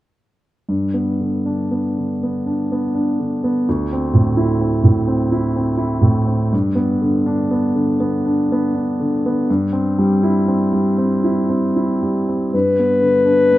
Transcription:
0.69 G2
0.94 B3
1.20 D3
1.46 D4
1.71 B3
1.98 D3
2.23 B3
2.46 D4
2.72 B3
2.94 D4
3.20 D3
3.44 B3
3.69 D2
3.93 C4
4.14 A2
4.37 E4
4.61 C4
4.84 A2
5.08 C4
5.32 E4
5.56 C4
5.77 E4
6.02 A2
6.27 C4
6.52 G2
6.75 B3
7.02 D3
7.26 D4
7.51 B3
7.75 D3
8.00 B3
8.26 D4
8.52 B3
8.74 D4
9.00 D3
9.26 B3
9.50 G2
9.73 C4
9.99 G3
10.23 E4
10.48 C4
10.73 G3
10.98 C4
11.24 E4
11.49 C4
11.76 E4
12.03 G3
12.29 C4
12.54 G2 B4
12.79 B3
13.02 D3
13.25 D4
13.52 B3

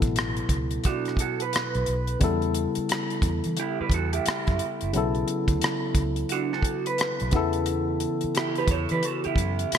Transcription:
Already playing: B2 F#3 B3 E4 A4
0.02 A1, kick, closed hi-hat
0.16 cross-stick, closed hi-hat
0.37 closed hi-hat
0.49 C#2, kick, closed hi-hat
0.71 closed hi-hat
0.84 D4 F#4, kick, closed hi-hat
1.05 cross-stick, closed hi-hat
1.17 A4, kick, closed hi-hat
1.21 F#4
1.40 B4, closed hi-hat
1.53 cross-stick, closed hi-hat
1.75 B1, closed hi-hat
1.86 B1, closed hi-hat
2.07 closed hi-hat
2.19 E2 C#3 G3 B3 E4, kick, closed hi-hat
2.24 A4
2.42 closed hi-hat
2.54 closed hi-hat
2.75 muted fingered electric bass stroke, closed hi-hat
2.89 cross-stick, closed hi-hat
3.10 closed hi-hat
3.22 E2, kick, closed hi-hat
3.44 E3, closed hi-hat
3.57 E4 G4, closed hi-hat
3.80 G4 B4, muted fingered electric bass stroke
3.90 E2, kick, closed hi-hat
3.94 F#4 A4
4.13 E4 G4, closed hi-hat
4.26 muted fingered electric bass stroke, cross-stick, closed hi-hat
4.47 F#2, kick, closed hi-hat
4.59 closed hi-hat
4.81 F#1, closed hi-hat
4.93 B1 C#3 F#3 B3 E4, closed hi-hat
4.97 A4
5.15 closed hi-hat
5.28 closed hi-hat
5.48 D2, kick, closed hi-hat
5.62 cross-stick, closed hi-hat
5.95 C#2, kick, closed hi-hat
6.16 closed hi-hat
6.29 D4 F#4, closed hi-hat
6.53 F#4 A4, cross-stick
6.62 kick, closed hi-hat
6.86 B4, closed hi-hat
6.98 cross-stick, closed hi-hat
7.20 B1, closed hi-hat
7.31 E2 C#3 E3 B3 E4, kick, closed hi-hat
7.36 A4
7.53 closed hi-hat
7.66 closed hi-hat
8.00 closed hi-hat
8.21 muted fingered electric bass stroke, closed hi-hat
8.35 E4 G4, cross-stick, closed hi-hat
8.55 G4 B4, closed hi-hat
8.68 E2 A4 C#5, kick, closed hi-hat
8.89 E3 G4 B4, closed hi-hat
9.03 F#4 A4, closed hi-hat
9.24 E4 G4, muted fingered electric bass stroke, closed hi-hat
9.36 F#2, kick, closed hi-hat
9.59 closed hi-hat
9.72 muted fingered electric bass stroke, cross-stick, closed hi-hat

